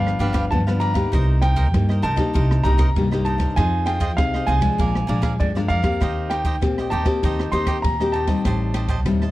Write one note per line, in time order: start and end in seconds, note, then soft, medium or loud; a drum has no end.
0.00 0.17 G1 medium
0.00 0.49 G2 soft
0.00 0.15 F3 medium
0.00 0.16 B3 medium
0.00 0.16 D4 medium
0.00 0.18 D4 medium
0.00 0.19 G4 medium
0.00 0.19 B4 medium
0.00 0.20 F5 medium
0.00 0.48 F5 medium
0.07 cross-stick medium
0.19 0.53 G1 medium
0.19 0.47 F3 medium
0.19 0.47 B3 medium
0.19 0.32 D4 medium
0.19 0.47 D4 medium
0.19 0.33 G4 medium
0.19 0.33 B4 medium
0.19 0.33 F5 medium
0.19 ride soft
0.33 0.44 D4 medium
0.33 0.44 G4 medium
0.33 0.44 B4 medium
0.33 0.45 F5 medium
0.33 kick medium
0.33 cross-stick medium
0.33 ride soft
0.51 1.04 G2 medium
0.51 1.10 D3 medium
0.51 0.61 F3 medium
0.51 0.61 B3 medium
0.51 0.62 D4 medium
0.51 0.58 A5 medium
0.51 kick medium
0.51 ride soft
0.67 0.93 F3 medium
0.67 0.93 B3 medium
0.67 0.94 D4 medium
0.67 0.80 G4 soft
0.67 0.80 B4 soft
0.67 0.81 F5 soft
0.67 cross-stick medium
0.80 0.95 D4 medium
0.80 0.95 G4 soft
0.80 0.94 B4 medium
0.80 0.93 F5 medium
0.80 1.44 A#5 medium
0.80 ride soft
0.94 1.53 A#3 medium
0.94 1.53 D#4 medium
0.94 1.53 G4 medium
0.94 1.11 G4 soft
0.94 1.11 B4 soft
0.94 1.10 F5 soft
0.94 kick medium
0.94 cross-stick medium
0.94 ride soft
1.12 1.74 C2 medium
1.12 1.71 C3 soft
1.12 1.41 D#4 medium
1.12 1.41 A#4 medium
1.12 1.42 C5 medium
1.12 1.43 D#5 medium
1.12 kick medium
1.12 cross-stick medium
1.12 ride soft
1.42 1.55 D#4 soft
1.42 1.55 A#4 soft
1.42 1.56 C5 soft
1.42 1.56 D#5 medium
1.42 2.06 G5 medium
1.42 cross-stick medium
1.42 ride soft
1.56 1.66 D#4 medium
1.56 1.67 A#4 medium
1.56 1.67 C5 medium
1.56 1.67 D#5 medium
1.56 kick medium
1.56 ride soft
1.74 2.32 G2 soft
1.74 2.00 G2 medium
1.74 2.03 A#3 medium
1.74 2.03 D#4 soft
1.74 2.03 G4 medium
1.74 kick medium
1.74 cross-stick medium
1.74 ride soft
1.89 2.02 A#4 soft
1.89 2.03 C5 soft
1.89 2.03 D#5 soft
1.89 cross-stick medium
2.02 2.17 C2 medium
2.02 2.18 D#4 medium
2.02 2.17 A#4 medium
2.02 2.16 C5 medium
2.02 2.15 D#5 medium
2.02 2.67 A5 medium
2.02 ride soft
2.16 2.60 A#3 medium
2.16 2.60 D#4 medium
2.16 2.60 G4 medium
2.16 2.33 A#4 soft
2.16 2.33 C5 soft
2.16 2.32 D#5 soft
2.16 kick medium
2.16 cross-stick medium
2.16 ride soft
2.34 2.61 C2 medium
2.34 2.93 C3 soft
2.34 2.62 D#4 medium
2.34 2.64 A#4 medium
2.34 2.64 C5 medium
2.34 2.65 D#5 medium
2.34 kick medium
2.34 ride medium
2.51 cross-stick medium
2.64 2.91 C2 medium
2.64 2.83 A#3 soft
2.64 2.77 D#4 medium
2.64 2.83 D#4 medium
2.64 2.84 G4 medium
2.64 2.77 A#4 medium
2.64 2.78 C5 medium
2.64 2.78 D#5 medium
2.64 3.28 A#5 medium
2.64 ride soft
2.78 2.88 D#4 medium
2.78 2.89 A#4 medium
2.78 2.89 C5 medium
2.78 2.89 D#5 medium
2.78 kick medium
2.78 cross-stick medium
2.78 ride soft
2.96 3.48 C2 medium
2.96 3.54 G2 medium
2.96 3.07 A#3 soft
2.96 3.07 D#4 medium
2.96 3.07 G4 medium
2.96 kick medium
2.96 ride soft
3.11 3.53 A#3 medium
3.11 3.53 D#4 medium
3.11 3.53 G4 medium
3.11 3.25 A#4 soft
3.11 3.26 C5 soft
3.11 3.25 D#5 soft
3.11 cross-stick medium
3.25 3.40 D#4 soft
3.25 3.39 A#4 soft
3.25 3.38 C5 soft
3.25 3.37 D#5 medium
3.25 3.54 A5 medium
3.25 ride soft
3.38 3.55 A#4 soft
3.38 3.55 C5 soft
3.38 3.54 D#5 soft
3.38 kick medium
3.38 cross-stick medium
3.38 ride soft
3.56 4.18 F2 medium
3.56 4.15 F3 medium
3.56 3.97 C4 soft
3.56 3.97 D#4 medium
3.56 3.85 F4 medium
3.56 3.85 G#4 medium
3.56 3.97 G#4 medium
3.56 3.86 C5 medium
3.56 3.87 D#5 medium
3.56 3.88 G#5 medium
3.56 kick medium
3.56 cross-stick medium
3.56 ride soft
3.86 3.99 F4 soft
3.86 3.99 G#4 medium
3.86 4.00 C5 soft
3.86 4.00 D#5 medium
3.86 4.18 G5 medium
3.86 cross-stick medium
3.86 ride soft
4.00 4.11 F4 medium
4.00 4.11 G#4 medium
4.00 4.11 C5 medium
4.00 4.11 D#5 medium
4.00 kick medium
4.00 ride soft
4.17 4.44 C2 medium
4.17 4.76 C3 soft
4.17 4.44 C4 medium
4.17 4.44 D#4 soft
4.17 4.44 G#4 medium
4.17 4.49 F5 medium
4.17 kick medium
4.17 cross-stick medium
4.17 ride soft
4.34 4.47 G#4 soft
4.34 4.47 C5 soft
4.34 4.48 D#5 soft
4.34 cross-stick medium
4.47 4.61 C2 medium
4.47 4.59 C4 soft
4.47 4.59 D#4 soft
4.47 4.62 F4 medium
4.47 4.62 G#4 medium
4.47 4.59 G#4 soft
4.47 4.61 C5 medium
4.47 4.60 D#5 medium
4.47 5.35 G#5 medium
4.47 ride soft
4.61 5.03 F3 medium
4.61 5.04 G#3 medium
4.61 5.04 D4 medium
4.61 4.77 G#4 soft
4.61 4.77 C5 soft
4.61 4.77 D#5 soft
4.61 kick medium
4.61 cross-stick medium
4.61 ride soft
4.78 5.05 A#1 medium
4.78 5.37 A#2 soft
4.78 5.06 G#4 medium
4.78 5.07 A#4 medium
4.78 5.08 D5 medium
4.78 5.08 F5 medium
4.78 kick medium
4.78 ride soft
4.95 cross-stick medium
5.07 5.39 A#1 medium
5.07 5.35 F3 medium
5.07 5.35 G#3 soft
5.07 5.35 D4 medium
5.07 5.21 G#4 medium
5.07 5.21 A#4 medium
5.07 5.22 D5 medium
5.07 5.21 F5 medium
5.07 ride soft
5.22 5.32 G#4 medium
5.22 5.33 A#4 medium
5.22 5.33 D5 medium
5.22 5.33 F5 medium
5.22 kick medium
5.22 cross-stick medium
5.22 ride soft
5.40 5.98 F2 medium
5.40 5.68 G2 medium
5.40 5.50 F3 soft
5.40 5.51 G#3 medium
5.40 5.51 D4 medium
5.40 5.47 D5 medium
5.40 kick medium
5.40 ride soft
5.55 5.81 F3 medium
5.55 5.82 G#3 medium
5.55 5.82 D4 medium
5.55 5.68 A#4 soft
5.55 5.69 D5 soft
5.55 5.69 F5 soft
5.55 cross-stick medium
5.68 5.98 F2 medium
5.68 5.84 G#4 medium
5.68 5.84 A#4 medium
5.68 5.81 D5 soft
5.68 6.32 F5 medium
5.68 5.83 F5 medium
5.68 ride soft
5.82 6.40 A#3 medium
5.82 6.41 C4 medium
5.82 6.41 G4 medium
5.82 6.00 A#4 soft
5.82 5.98 D5 soft
5.82 5.99 F5 soft
5.82 kick medium
5.82 cross-stick medium
5.82 ride soft
6.00 6.62 D#2 medium
6.00 6.59 D#3 medium
6.00 6.29 D#4 medium
6.00 6.30 G4 medium
6.00 6.31 C5 medium
6.00 6.31 D#5 medium
6.00 kick medium
6.00 cross-stick medium
6.00 ride soft
6.30 6.43 D#4 soft
6.30 6.44 G4 soft
6.30 6.44 C5 soft
6.30 6.45 D#5 soft
6.30 6.94 G5 medium
6.30 cross-stick medium
6.30 ride soft
6.44 6.55 D#4 medium
6.44 6.55 G4 medium
6.44 6.55 C5 medium
6.44 6.55 D#5 medium
6.44 kick medium
6.44 ride soft
6.61 6.88 A#1 medium
6.61 7.20 A#2 soft
6.61 7.03 A#3 soft
6.61 7.03 C4 medium
6.61 7.03 G4 medium
6.61 kick medium
6.61 cross-stick medium
6.61 ride soft
6.78 6.91 G4 soft
6.78 6.92 C5 soft
6.78 6.92 D#5 soft
6.78 cross-stick medium
6.90 7.05 D#2 medium
6.90 7.06 D#4 medium
6.90 7.06 G4 medium
6.90 7.05 C5 medium
6.90 7.04 D#5 medium
6.90 7.48 A5 medium
6.90 ride soft
7.05 7.47 A#3 medium
7.05 7.48 C4 medium
7.05 7.48 G4 medium
7.05 7.22 G4 soft
7.05 7.21 C5 soft
7.05 7.21 D#5 soft
7.05 kick medium
7.05 cross-stick medium
7.05 ride soft
7.23 7.49 D#2 medium
7.23 7.81 D#3 medium
7.23 7.51 D#4 medium
7.23 7.52 G4 medium
7.23 7.52 C5 medium
7.23 7.53 D#5 medium
7.23 kick medium
7.23 ride soft
7.39 cross-stick medium
7.52 7.79 D#2 medium
7.52 7.94 A#3 medium
7.52 7.94 C4 soft
7.52 7.66 D#4 medium
7.52 7.66 G4 medium
7.52 7.94 G4 medium
7.52 7.67 C5 medium
7.52 7.67 D#5 medium
7.52 7.81 C6 medium
7.52 ride soft
7.67 7.77 D#4 medium
7.67 7.77 G4 medium
7.67 7.77 C5 medium
7.67 7.78 D#5 medium
7.67 kick medium
7.67 cross-stick medium
7.67 ride soft
7.82 8.36 D#2 medium
7.82 8.42 A#2 medium
7.82 8.15 A#5 medium
7.82 kick medium
7.82 ride soft
8.00 8.26 A#3 medium
8.00 8.26 C4 medium
8.00 8.26 G4 medium
8.00 8.13 G4 soft
8.00 8.14 C5 soft
8.00 8.14 D#5 soft
8.00 cross-stick medium
8.12 8.28 D#4 soft
8.12 8.29 G4 soft
8.12 8.28 C5 soft
8.12 8.27 D#5 soft
8.12 9.31 A5 medium
8.12 ride soft
8.27 8.85 G3 soft
8.27 8.85 C4 soft
8.27 8.85 D#4 medium
8.27 8.44 G4 soft
8.27 8.44 C5 soft
8.27 8.43 D#5 soft
8.27 kick medium
8.27 cross-stick medium
8.27 ride soft
8.45 9.06 A1 medium
8.45 9.03 A2 medium
8.45 8.73 G4 medium
8.45 8.74 C5 medium
8.45 8.75 D#5 medium
8.45 8.75 A5 medium
8.45 kick medium
8.45 cross-stick medium
8.45 ride soft
8.74 8.88 G4 soft
8.74 8.88 C5 medium
8.74 8.89 D#5 soft
8.74 8.89 A5 soft
8.74 cross-stick medium
8.74 ride medium
8.88 8.99 G4 medium
8.88 8.99 C5 medium
8.88 8.99 D#5 medium
8.88 9.00 A5 medium
8.88 kick medium
8.88 ride soft
9.06 9.31 D#2 medium
9.06 9.31 A2 medium
9.06 9.24 G3 soft
9.06 9.24 C4 medium
9.06 9.25 D#4 soft
9.06 kick medium
9.06 cross-stick medium
9.06 ride soft
9.22 9.31 C5 soft
9.22 9.31 D#5 soft
9.22 9.31 A5 soft
9.22 cross-stick medium